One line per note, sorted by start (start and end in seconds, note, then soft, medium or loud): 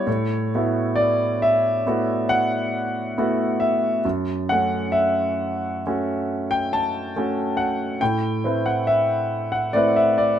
0.00 0.97 C#5 medium
0.07 0.51 A2 soft
0.55 1.83 A3 soft
0.55 1.83 B3 soft
0.55 1.83 E4 soft
0.55 1.83 F#4 soft
0.96 1.41 D5 medium
1.42 2.30 E5 medium
1.86 3.15 A3 soft
1.86 3.14 B3 soft
1.86 3.14 E4 soft
1.86 3.15 F#4 soft
2.29 3.60 F#5 medium
3.18 4.00 A3 soft
3.18 4.00 B3 soft
3.18 4.00 E4 soft
3.18 4.00 F#4 soft
3.60 4.04 E5 medium
4.05 4.48 F#2 soft
4.49 5.81 A3 soft
4.49 5.82 C#4 soft
4.49 5.81 F#4 soft
4.49 4.94 F#5 medium
4.92 6.48 E5 medium
5.87 7.12 A3 soft
5.87 7.12 C#4 soft
5.87 7.12 F#4 soft
6.51 6.72 G5 medium
6.73 7.58 A5 medium
7.16 7.97 A3 soft
7.16 7.98 C#4 soft
7.16 7.98 F#4 soft
7.57 8.00 F#5 medium
8.01 8.43 A2 soft
8.01 8.65 G5 medium
8.44 9.69 A3 soft
8.44 9.69 C4 soft
8.44 9.70 E4 soft
8.44 9.70 B4 soft
8.66 8.86 F#5 medium
8.87 9.52 E5 medium
9.52 9.73 F#5 medium
9.73 10.39 A3 soft
9.73 10.39 C4 soft
9.73 10.39 E4 soft
9.73 10.39 B4 soft
9.73 9.95 D5 medium
9.96 10.17 E5 medium
10.18 10.39 D5 medium